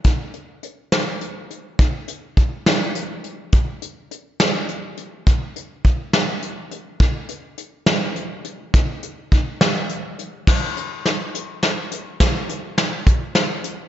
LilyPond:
\new DrumStaff \with { instrumentName = "Drums" } \drummode { \time 6/8 \tempo 4. = 69 <hh bd>8 hh8 hh8 <hh sn>8 hh8 hh8 | <hh bd>8 hh8 <hh bd>8 <hh sn>8 hh8 hh8 | <hh bd>8 hh8 hh8 <hh sn>8 hh8 hh8 | <hh bd>8 hh8 <hh bd>8 <hh sn>8 hh8 hh8 |
<hh bd>8 hh8 hh8 <hh sn>8 hh8 hh8 | <hh bd>8 hh8 <hh bd>8 <hh sn>8 hh8 hh8 | <cymc bd sn>8 hh8 <hh sn>8 hh8 <hh sn>8 hh8 | <hh bd sn>8 hh8 <hh sn>8 <hh bd>8 <hh sn>8 hh8 | }